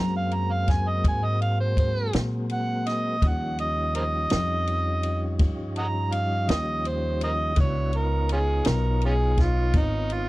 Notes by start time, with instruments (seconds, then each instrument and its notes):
Already playing: upright bass F#2, tonewheel organ F#3 G#3 A#3 C4
0.00 harmonica A#5
0.17 harmonica F5
0.31 harmonica A#5, ride
0.52 harmonica F5
0.68 harmonica G#5, kick, snare, ride
0.88 harmonica D#5
1.04 upright bass G#2, harmonica G#5, kick, ride
1.24 harmonica D#5
1.42 harmonica F5, ride
1.60 harmonica C5
1.77 harmonica C5, kick, ride
2.13 upright bass A#2, snare, ride
2.50 harmonica F#5, ride
2.86 harmonica D#5, snare, ride
3.22 upright bass D#2, tonewheel organ F3 G3 C#4 D#4, kick, ride
3.27 harmonica F#5
3.59 harmonica D#5, ride
3.95 harmonica A#4 C5 D#5, ride
4.30 upright bass F2, snare, ride
4.67 ride
5.03 ride
5.39 upright bass G2, kick, ride
5.76 harmonica D#5 F#5 A#5, ride
6.12 harmonica F5, ride
6.49 upright bass D#2, harmonica D#5, snare, ride
6.85 harmonica C5, ride
7.21 harmonica A#4 C5 D#5, ride
7.56 upright bass C#2, tonewheel organ B3 D4 E4 F#4, kick, ride
7.61 harmonica C#5
7.93 tonewheel organ B3 D#4 F4 C#5, harmonica A#4, ride
8.29 harmonica C#4 F4 G#4, ride
8.65 upright bass B1, harmonica A#4, snare, ride
9.01 ride
9.06 harmonica C#4 F4 G#4
9.37 harmonica F4, kick, snare, ride
9.73 upright bass G#1, harmonica D#4, kick, ride
10.10 harmonica F4, ride